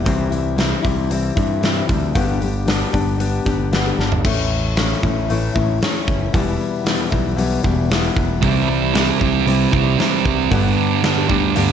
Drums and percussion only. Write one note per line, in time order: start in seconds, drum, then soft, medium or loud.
0.06 kick loud
0.06 open hi-hat medium
0.32 open hi-hat soft
0.58 snare loud
0.58 open hi-hat medium
0.85 kick medium
0.85 open hi-hat soft
1.11 open hi-hat medium
1.37 kick medium
1.37 open hi-hat soft
1.63 snare medium
1.63 open hi-hat medium
1.89 kick medium
1.89 open hi-hat soft
2.15 kick loud
2.15 open hi-hat medium
2.42 open hi-hat soft
2.68 snare loud
2.68 open hi-hat medium
2.94 kick medium
2.94 open hi-hat soft
3.20 open hi-hat medium
3.46 kick medium
3.46 open hi-hat soft
3.73 snare medium
3.73 open hi-hat medium
4.00 snare medium
4.12 floor tom medium
4.25 kick loud
4.25 crash loud
4.77 snare loud
4.77 open hi-hat medium
5.03 kick medium
5.30 open hi-hat soft
5.56 kick medium
5.82 snare medium
5.82 open hi-hat soft
6.08 kick medium
6.34 kick loud
6.34 open hi-hat medium
6.86 snare loud
6.86 open hi-hat medium
7.12 kick medium
7.38 open hi-hat medium
7.64 kick medium
7.91 snare medium
7.91 open hi-hat medium
8.16 kick medium
8.43 kick loud
8.43 open hi-hat medium
8.95 snare loud
8.95 open hi-hat medium
9.21 kick medium
9.48 open hi-hat soft
9.73 kick medium
10.00 snare medium
10.00 open hi-hat soft
10.25 kick medium
10.52 kick loud
10.52 open hi-hat medium
11.04 snare loud
11.04 open hi-hat medium
11.30 kick medium
11.56 open hi-hat medium